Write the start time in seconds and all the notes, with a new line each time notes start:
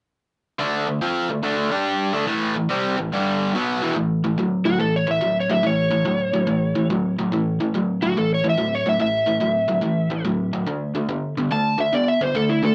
0.59 D3 A3 D4
0.87 D3 A3
1.01 F3 C4 F4
1.30 D3 A3
1.43 D3 A3 D4
1.71 G3 D4 G4
2.13 D3 A3 D4
2.27 A2 E3 A3
2.56 A2 E3
2.69 C3 G3 C4
2.98 A2 E3
3.13 G2 D3 G3
3.54 B2 F#3 B3
3.82 E2 B2 E3
3.96 A2 E3
4.24 A2 E3
4.38 A2 F#3
4.65 A2 F#3 F#4
4.80 A2 E3 A4
4.96 C#5
5.07 A2 E3 E5
5.21 A2 F#3
5.40 C#5
5.50 A2 F#3 E5
5.63 A2 E3 C#5
5.91 A2 E3
6.05 A2 F#3
6.34 A2 F#3
6.47 A2 E3
6.76 A2 E3
6.90 A2 F#3
7.19 A2 F#3
7.32 A2 E3
7.61 A2 E3
7.75 A2 F#3
8.02 A2 F#3 F#4
8.17 A2 E3 A4
8.34 C#5
8.44 A2 E3
8.49 E5
8.57 A2 F#3
8.75 C#5
8.86 A2 F#3 E5
8.99 A2 E3 E5
9.27 A2 E3
9.41 A2 F#3
9.69 A2 F#3
9.82 A2 E3
10.10 A2 E3
10.25 A2 F#3
10.53 A2 F#3
10.67 D3 A3
10.95 D3 A3
11.09 D3 B3
11.37 D3 B3
11.51 D3 A3 A5
11.78 D3 A3 E5
11.93 D3 B3 D5
12.08 E5
12.21 D3 B3 C5
12.35 D3 A3 A4
12.49 E4
12.63 D3 A3 A4